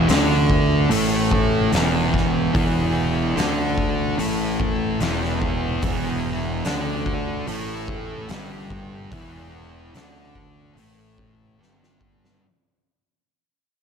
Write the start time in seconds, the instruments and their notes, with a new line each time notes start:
0.08 fingered electric bass D2, distorted electric guitar D3 D4, snare, open hi-hat
0.50 kick
0.90 fingered electric bass A1, distorted electric guitar A2 A3, open hi-hat
1.31 kick
1.72 fingered electric bass E1, distorted electric guitar E2 E3, snare, open hi-hat
2.14 kick, snare
2.54 fingered electric bass E1, distorted electric guitar E2 E3, kick, open hi-hat
3.36 fingered electric bass D2, distorted electric guitar D3 D4, snare, open hi-hat
3.78 kick
4.18 fingered electric bass A1, distorted electric guitar A2 A3, open hi-hat
4.60 kick
5.00 fingered electric bass E1, distorted electric guitar E2 E3, snare, open hi-hat
5.24 snare
5.42 kick
5.82 fingered electric bass E1, distorted electric guitar E2 E3, kick, open hi-hat
6.65 fingered electric bass D2, distorted electric guitar D3 D4, snare, open hi-hat
7.06 kick
7.47 fingered electric bass A1, distorted electric guitar A2 A3, open hi-hat
7.88 kick
8.29 fingered electric bass G1, distorted electric guitar G2 G3, snare, open hi-hat
8.70 kick
9.11 fingered electric bass E1, distorted electric guitar E2 E3, kick, open hi-hat
9.93 fingered electric bass D2, distorted electric guitar D3 D4, snare, open hi-hat
10.35 kick
10.75 fingered electric bass A1, distorted electric guitar A2 A3, open hi-hat
11.18 kick
11.58 fingered electric bass G1, distorted electric guitar G2 G3
11.63 snare
11.83 snare
12.01 kick
12.25 snare